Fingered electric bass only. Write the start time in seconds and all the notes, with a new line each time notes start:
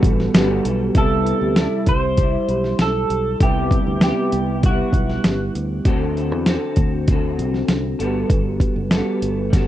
0.03 A1
0.34 G1
0.65 B1
0.95 C2
1.41 D2
1.87 C2
2.49 B1
2.79 B1
3.10 B1
3.41 C2
3.87 D2
4.33 C2
4.93 B1
5.25 G1
5.55 D2
5.85 D2
6.32 E2
6.77 D2
7.39 C2
7.68 C2
8.00 G1
8.30 G1
8.76 F#1
9.22 G1